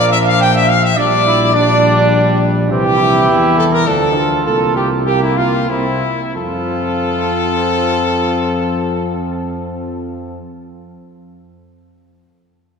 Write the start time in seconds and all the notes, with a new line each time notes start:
Already playing: A#1 F3 A#3 D5
0.12 E5
0.24 F5
0.40 G5
0.54 E5
0.67 F5
0.82 E5
0.97 A#1 G3 D4 D5
1.26 E4
1.53 G3 D4 D5
2.70 C2 E3 C4 G4
2.98 E4
3.29 E2
3.57 A4
3.72 A#4
3.86 D2 F3 D4 A4
4.16 F4
4.46 C2 A#3 A4
4.75 G4
5.06 A#3 G4
5.22 E4
5.37 F4
5.69 C2 A#3 C4 E4
6.34 F2 F3 C4 F4 A4